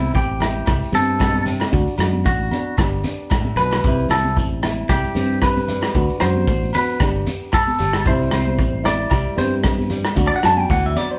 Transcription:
Already playing: fingered electric bass C2, nylon-string guitar C3 C4 E4, clean electric guitar E4
0.02 high conga, shekere
0.14 fingered electric bass A1, clean electric guitar G4, muted nylon-string guitar stroke, kick, shekere
0.40 nylon-string guitar E4, cross-stick, closed hi-hat, high conga, low conga, low agogo, shekere
0.66 fingered electric bass C2, nylon-string guitar G2, muted nylon-string guitar stroke, kick, cross-stick, low agogo, shekere
0.83 shekere
0.92 fingered electric bass G2, nylon-string guitar C4, clean electric guitar A4, closed hi-hat, high conga, low conga, shekere
1.09 shekere
1.19 nylon-string guitar B2, kick, cross-stick, low agogo, shekere
1.34 high conga, shekere
1.45 nylon-string guitar C3, closed hi-hat, low conga, shekere
1.60 cross-stick, low agogo
1.71 fingered electric bass D2, nylon-string guitar D3 D4 F#4, kick, shekere
1.87 shekere
1.98 fingered electric bass F#2, nylon-string guitar F#4, cross-stick, closed hi-hat, low conga, low agogo, shekere
2.13 high conga, shekere
2.25 fingered electric bass A1, nylon-string guitar A3, clean electric guitar F#4, kick, shekere
2.51 nylon-string guitar D4, closed hi-hat, high conga, low conga, low agogo
2.77 fingered electric bass G1, nylon-string guitar G2 B3 D4 G4, muted clean electric guitar stroke, kick, cross-stick, low agogo, shekere
2.92 shekere
3.04 nylon-string guitar D4, closed hi-hat, high conga, low conga, shekere
3.19 shekere
3.30 nylon-string guitar A2, kick, cross-stick, low agogo, shekere
3.45 high conga, shekere
3.56 fingered electric bass B1, nylon-string guitar B2, clean electric guitar B4, closed hi-hat, low conga
3.71 cross-stick, low agogo
3.84 fingered electric bass C2, nylon-string guitar C3 G3 C4 E4, kick, shekere
4.00 shekere
4.09 fingered electric bass C2, nylon-string guitar C4, clean electric guitar A4, cross-stick, closed hi-hat, low conga, low agogo, shekere
4.25 high conga, shekere
4.36 fingered electric bass A1, nylon-string guitar E3, kick, shekere
4.63 nylon-string guitar E4, cross-stick, closed hi-hat, high conga, low conga, low agogo, shekere
4.89 fingered electric bass C2, nylon-string guitar G2 G3, clean electric guitar G4, kick, cross-stick, low agogo, shekere
5.04 shekere
5.15 fingered electric bass G2, nylon-string guitar C4, closed hi-hat, high conga, low conga, shekere
5.31 shekere
5.41 nylon-string guitar E3, clean electric guitar B4, kick, cross-stick, low agogo, shekere
5.56 high conga, shekere
5.68 nylon-string guitar G3, closed hi-hat, low conga, shekere
5.82 cross-stick, low agogo
5.94 fingered electric bass D2, nylon-string guitar D3 D4 F#4, kick, shekere
6.09 shekere
6.20 fingered electric bass F#2, nylon-string guitar F#4, clean electric guitar C5, cross-stick, closed hi-hat, low conga, low agogo, shekere
6.36 high conga, shekere
6.47 fingered electric bass A1, nylon-string guitar A3, kick, shekere
6.63 shekere
6.73 nylon-string guitar F#4, clean electric guitar B4, closed hi-hat, high conga, low conga, low agogo, shekere
6.90 shekere
7.00 fingered electric bass G1, nylon-string guitar G2 B3 D4 G4, kick, cross-stick, low agogo, shekere
7.16 shekere
7.27 closed hi-hat, high conga, low conga, shekere
7.43 shekere
7.52 nylon-string guitar D3, clean electric guitar A4, kick, cross-stick, low agogo, shekere
7.67 high conga, shekere
7.79 fingered electric bass G1, nylon-string guitar G4, closed hi-hat, low conga, shekere
7.93 cross-stick, low agogo, shekere
8.05 fingered electric bass C2, nylon-string guitar C3 G3 C4 E4, clean electric guitar C5, kick, shekere
8.21 shekere
8.31 fingered electric bass C2, nylon-string guitar C4, cross-stick, closed hi-hat, low conga, low agogo, shekere
8.48 high conga, shekere
8.58 fingered electric bass A1, nylon-string guitar E3, kick, shekere
8.84 nylon-string guitar E4, clean electric guitar D5, cross-stick, closed hi-hat, high conga, low conga, low agogo, shekere
9.10 fingered electric bass C2, nylon-string guitar G2 G3, kick, cross-stick, low agogo, shekere
9.29 shekere
9.36 fingered electric bass G2, nylon-string guitar C4, clean electric guitar C5, closed hi-hat, high conga, low conga, shekere
9.53 shekere
9.63 nylon-string guitar E3, kick, cross-stick, low agogo, shekere
9.78 high conga, shekere
9.90 nylon-string guitar G3, closed hi-hat, low conga, shekere
10.05 cross-stick, low agogo
10.15 fingered electric bass D2, nylon-string guitar D3 D4 F#4, kick, shekere
10.27 clean electric guitar D5
10.33 clean electric guitar F#5, shekere
10.43 fingered electric bass F#2, nylon-string guitar F#4, clean electric guitar A5, cross-stick, closed hi-hat, low conga, low agogo, shekere
10.57 clean electric guitar G5, high conga, shekere
10.70 fingered electric bass D2, nylon-string guitar E3, clean electric guitar F#5, kick, shekere
10.86 clean electric guitar E5
10.96 nylon-string guitar F#3, clean electric guitar D5, closed hi-hat, high conga, low conga, low agogo, shekere
11.11 clean electric guitar C5

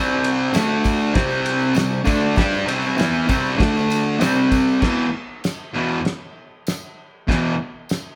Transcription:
Already playing: distorted electric guitar C3 G3 C4
0.23 ride, tambourine
0.52 distorted electric guitar D3 A3 D4, snare, ride, tambourine
0.84 kick, ride, tambourine
0.98 tambourine
1.14 distorted electric guitar C3 G3 C4, kick, snare, ride, tambourine
1.30 tambourine
1.46 ride
1.60 tambourine
1.75 distorted electric guitar C3 G3, snare, ride, tambourine
2.04 distorted electric guitar D3 A3 D4, kick, ride, tambourine
2.36 distorted electric guitar G3 D4 G4, kick, snare, ride, tambourine
2.51 tambourine
2.66 distorted electric guitar C3 G3 C4, ride
2.82 tambourine
2.97 distorted electric guitar E3 B3 E4, snare, ride, tambourine
3.13 tambourine
3.28 distorted electric guitar C3 G3 C4, kick, ride, tambourine
3.44 tambourine
3.58 distorted electric guitar D3 A3 D4, kick, snare, ride, tambourine
3.75 tambourine
3.90 ride, tambourine
4.20 distorted electric guitar C3 G3 C4, snare, ride, tambourine
4.52 kick, ride, tambourine
4.68 tambourine
4.81 distorted electric guitar E2 B2 E3, kick, snare, crash
5.44 snare, tambourine, crash
5.73 distorted electric guitar E2 B2 E3
6.05 snare, crash
6.67 snare, tambourine, crash
7.27 distorted electric guitar E2 B2 E3, kick, snare, crash
7.89 snare, tambourine, crash

